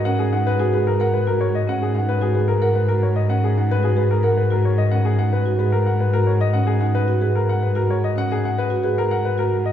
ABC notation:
X:1
M:3/4
L:1/16
Q:1/4=111
K:G#m
V:1 name="Grand piano"
f G f B G B A f B A c d | f G f B G B A f B A c d | f G f B G B A f B A c d | f G f B z B A f B A c d |
f G f B z B A f B A c d | f G f B z B A f B A z d |]
V:2 name="Marimba"
C z D z F G z A z F z2 | C z D z F G z A z F z2 | C z D z F G z A z F z2 | C z D z F G z3 F z2 |
C z D z F G z3 F z2 | C z3 F G z3 F z2 |]
V:3 name="Cello" clef=bass
G,,12- | G,,12- | G,,12- | G,,12- |
G,,12- | G,,12 |]